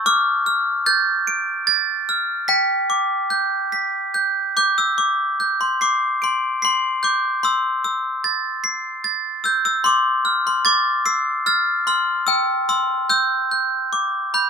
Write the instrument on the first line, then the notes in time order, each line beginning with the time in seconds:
glockenspiel
0.06 D6 F6
0.46 F6
0.86 G6 A6
1.27 D7
1.67 A6
2.09 F6
2.48 G5 B6
2.90 D6
3.30 G6
3.72 B6
4.14 G6
4.57 D6 G6
4.78 E6
4.98 D6
5.40 G6
5.61 C6
5.81 D6 C7
6.22 C6 D7
6.62 C6 C7
7.03 D6 G6
7.43 C6 E6
7.84 E6
8.24 A6
8.64 C7
9.04 A6
9.44 E6 G6
9.65 E6
9.84 C6 D6
10.25 F6
10.47 C6
10.65 D6 A6
11.06 E6 C7
11.46 F6 A6
11.87 C6 F6
12.27 G5 E6
12.69 C6 E6
13.10 E6 G6
13.51 G6
13.93 D6
14.34 B5 G6